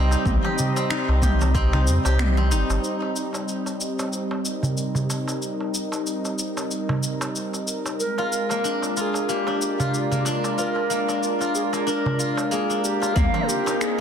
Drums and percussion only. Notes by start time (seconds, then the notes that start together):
0.11 darbuka tek, shaker
0.26 kick, mid tom, shaker
0.45 darbuka ka
0.58 darbuka dum, shaker
0.77 darbuka ka, darbuka tek, shaker
0.90 finger snap, shaker
1.09 darbuka ka
1.22 kick, mid tom, shaker
1.41 darbuka tek, shaker
1.54 kick, shaker
1.73 finger snap, darbuka tek, darbuka dum
1.87 shaker
2.05 darbuka tek, shaker
2.19 finger snap, mid tom, shaker
2.38 darbuka ka
2.52 shaker
2.70 darbuka tek, shaker
2.84 shaker
3.02 darbuka ka
3.16 shaker
3.33 darbuka ka, darbuka tek, shaker
3.48 shaker
3.66 darbuka ka, shaker
3.81 shaker
3.99 darbuka tek, shaker
4.13 shaker
4.31 darbuka tek
4.45 shaker
4.63 darbuka dum, shaker
4.78 shaker
4.95 darbuka dum, shaker
5.10 darbuka tek, shaker
5.28 darbuka tek, shaker
5.42 shaker
5.61 darbuka ka
5.75 shaker
5.92 darbuka ka, darbuka tek, shaker
6.07 shaker
6.25 darbuka ka, shaker
6.39 shaker
6.57 darbuka tek, shaker
6.71 shaker
6.89 darbuka tek, darbuka dum
7.03 shaker
7.21 darbuka tek, shaker
7.36 shaker
7.54 darbuka ka, shaker
7.68 shaker
7.86 darbuka tek, shaker
8.00 shaker
8.18 darbuka ka
8.33 shaker
8.49 darbuka ka, darbuka tek, shaker
8.65 shaker
8.82 darbuka ka, shaker
8.97 shaker
9.14 darbuka tek, shaker
9.29 shaker
9.47 darbuka tek
9.62 shaker
9.80 darbuka dum, shaker
9.94 shaker
10.12 darbuka dum, shaker
10.25 darbuka tek, shaker
10.44 darbuka tek, shaker
10.59 shaker
10.76 darbuka ka
10.91 shaker
11.09 darbuka ka, darbuka tek, shaker
11.23 shaker
11.41 darbuka ka, shaker
11.55 shaker
11.73 darbuka tek, shaker
11.88 shaker
12.06 darbuka tek, darbuka dum
12.20 shaker
12.37 darbuka tek, shaker
12.52 shaker
12.71 darbuka ka, shaker
12.85 shaker
13.02 darbuka tek, shaker
13.16 kick, mid tom, shaker
13.34 darbuka ka
13.49 shaker
13.67 darbuka ka, darbuka tek, shaker
13.81 finger snap, shaker